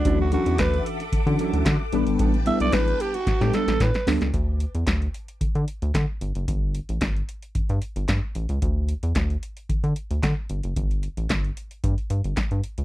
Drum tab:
HH |x-xxxxxxxxxxx-xx|xxxxxxxxxxxxxxox|x-xxxxxxxxxxx-xx|x-xxxxxxxxxxx-xx|
CP |----x-------x---|----x-----------|----x-------x---|----x-------x---|
SD |----o-------o---|----o---oooooooo|----o-------o---|----o-------o---|
BD |o---o---o---o---|o---o---o---o---|o---o---o---o---|o---o---o---o---|

HH |x-xxxxxxxxxxx-xx|xxxxxxxxxxxxxxxx|
CP |----x-------x---|----x-------x---|
SD |----o-------o---|----o-------o---|
BD |o---o---o---o---|o---o---o---o---|